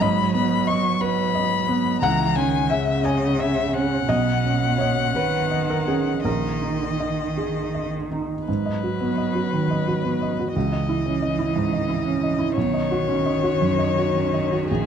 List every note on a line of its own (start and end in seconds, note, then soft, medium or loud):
0.00 1.99 G#2 medium
0.00 2.02 F#3 medium
0.00 0.66 D#5 medium
0.00 0.34 B5 medium
0.34 0.88 B3 soft
0.34 0.68 B5 medium
0.67 1.21 D#5 medium
0.67 1.02 C#6 medium
1.01 1.55 B4 medium
1.01 2.01 B5 medium
1.35 1.89 D#5 medium
1.68 2.02 B3 soft
2.01 4.04 C#2 medium
2.01 2.39 E3 medium
2.01 3.01 F#5 loud
2.01 2.37 A#5 medium
2.35 2.73 D#3 medium
2.35 2.91 C#4 soft
2.35 2.71 G#5 medium
2.69 4.07 C#3 medium
2.69 3.05 E5 medium
2.69 3.25 E5 medium
3.04 3.59 C#5 medium
3.04 3.41 D#5 medium
3.04 3.69 G#5 medium
3.39 3.94 E5 soft
3.39 3.75 E5 medium
3.73 4.08 C#4 soft
3.73 6.23 F#5 medium
4.07 6.21 B1 soft
4.07 5.16 B2 medium
4.07 4.75 D#5 medium
4.44 5.01 C#4 soft
4.78 5.12 C#5 medium
4.78 5.37 D#5 soft
5.15 6.25 D#3 soft
5.15 5.66 B4 medium
5.15 5.73 C#5 soft
5.51 6.09 D#5 soft
5.70 5.87 A#4 medium
5.87 6.24 C#4 soft
5.87 6.22 G#4 medium
6.23 8.44 A#1 soft
6.23 8.23 D#3 soft
6.23 8.08 A#4 soft
6.23 7.89 D#5 medium
6.62 7.22 D#4 soft
7.00 7.59 D#5 soft
7.38 7.97 G#4 soft
7.74 8.33 D#5 soft
8.12 8.48 D#4 soft
8.47 10.51 G#2 soft
8.47 10.51 F#3 soft
8.47 10.50 B4 soft
8.66 8.93 D#5 soft
8.84 9.11 F#4 soft
9.01 9.28 B3 soft
9.17 9.45 D#5 soft
9.35 9.63 F#4 soft
9.53 9.80 D#3 soft
9.71 9.98 D#5 soft
9.88 10.15 F#4 soft
10.04 10.31 B3 soft
10.22 10.49 D#5 soft
10.39 10.56 F#4 soft
10.55 12.53 C#2 soft
10.55 12.52 E3 soft
10.55 12.52 D#5 soft
10.72 10.99 D#5 soft
10.89 11.15 E4 soft
11.06 11.32 C#4 soft
11.22 11.49 D#5 soft
11.39 11.65 E4 soft
11.56 11.82 G#2 soft
11.73 11.99 D#5 soft
11.89 12.16 E4 soft
12.06 12.33 C#4 soft
12.23 12.50 D#5 soft
12.39 12.56 E4 soft
12.55 14.66 B1 soft
12.55 14.86 D#3 soft
12.55 14.65 C#5 medium
12.74 13.01 D#5 soft
12.91 13.18 F#4 soft
13.08 13.36 C#4 soft
13.26 13.54 D#5 soft
13.43 13.71 F#4 soft
13.62 13.90 F#2 soft
13.79 14.07 D#5 soft
13.98 14.26 F#4 soft
14.15 14.44 C#4 soft
14.34 14.62 D#5 soft
14.52 14.70 F#4 soft
14.69 14.86 A#1 soft
14.69 14.86 G#4 soft